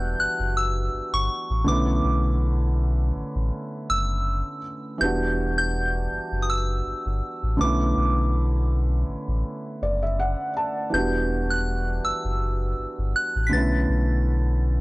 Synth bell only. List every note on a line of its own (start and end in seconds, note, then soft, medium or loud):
0.00 0.20 G6 loud
0.20 0.57 F#6 loud
0.57 1.15 E6 loud
1.14 1.69 C#6 medium
1.68 2.38 D6 medium
3.90 4.60 E6 loud
5.01 5.54 G6 loud
5.58 6.38 G6 loud
6.42 6.49 D#6 medium
6.50 7.56 E6 loud
7.61 8.30 D6 medium
10.94 11.52 G6 loud
11.50 12.06 F#6 medium
12.05 13.11 E6 medium
13.16 13.44 F#6 loud
13.47 13.53 B6 medium
13.53 14.23 A6 loud